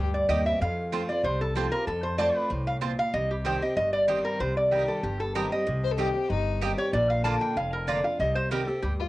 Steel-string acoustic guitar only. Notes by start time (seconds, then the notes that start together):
0.00 G2
0.29 D#3 G3 C4 G4
0.46 C4 G4
0.62 F2
0.92 F3 A3 C4 F4
1.09 C4 F4
1.25 C3
1.55 F3 A3 C4 F4
1.72 C4 F4
1.88 F2
2.18 F3 A3 C4 F4
2.50 A2
2.82 A#2
3.14 C3
3.45 D#3 G3 C4 G4
3.62 C4 G4
3.77 G2
4.08 D#3 G3 C4 G4
4.40 C3
4.71 D#3 G3 C4 G4
5.04 G2
5.35 D#3 G3 C4 G4
5.52 C4 G4
5.66 C3
5.98 D#3 G3 C4 G4
6.14 C4 G4
6.30 G2
6.61 D#3 G3 C4 G4
6.78 C4 G4
6.93 A#2
7.25 D3 A#3 D4 F4
7.57 F2
7.87 D3 A#3 D4 F4
8.04 D4 F4
8.20 C3
8.51 D#3 G3 C4 G4
8.68 C4 G4
8.83 G2